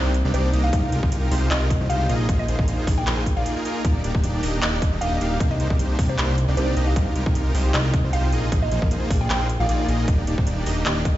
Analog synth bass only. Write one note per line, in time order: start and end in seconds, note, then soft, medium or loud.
0.00 0.23 C2 loud
0.25 0.32 C2 loud
0.34 0.52 C2 loud
0.53 0.71 C2 loud
0.73 0.91 C2 loud
0.92 1.01 C2 loud
1.03 1.10 C2 loud
1.12 1.30 C2 loud
1.31 1.49 C2 loud
1.51 1.79 C2 medium
1.81 1.88 C2 loud
1.90 2.07 C2 loud
2.09 2.27 A#1 medium
2.29 2.46 A#1 loud
2.48 2.57 A#1 loud
2.59 2.66 A#1 loud
2.68 2.85 A#1 loud
2.87 3.05 A#1 loud
3.06 3.34 A#1 loud
3.36 3.45 A#1 loud
3.85 4.02 D#1 medium
4.04 4.12 D#1 loud
4.15 4.22 D#1 loud
4.23 4.41 D#1 loud
4.43 4.61 D#1 loud
4.62 4.90 D#1 loud
4.92 5.00 D#1 loud
5.01 5.19 D#1 loud
5.21 5.38 D#1 loud
5.40 5.58 C2 loud
5.60 5.68 C2 medium
5.70 5.78 C2 loud
5.79 5.97 C2 loud
5.99 6.16 C2 loud
6.18 6.46 C2 loud
6.48 6.55 C2 loud
6.57 6.75 C2 loud
6.77 6.94 C2 medium
6.96 7.14 C2 medium
7.15 7.24 C2 loud
7.26 7.33 C2 loud
7.35 7.53 C2 loud
7.54 7.72 C2 loud
7.74 8.02 C2 loud
8.04 8.11 C2 loud
8.13 8.34 C2 medium
8.32 8.50 A#1 loud
8.52 8.70 A#1 loud
8.71 8.80 A#1 loud
8.82 8.89 A#1 loud
8.91 9.09 A#1 loud
9.10 9.28 A#1 loud
9.30 9.58 A#1 loud
9.60 9.67 A#1 loud
9.69 9.87 A#1 loud
9.88 10.06 A#1 loud
10.08 10.26 D#1 loud
10.27 10.36 D#1 medium
10.38 10.45 D#1 loud
10.47 10.65 D#1 loud
10.66 10.84 D#1 loud
10.86 11.14 D#1 loud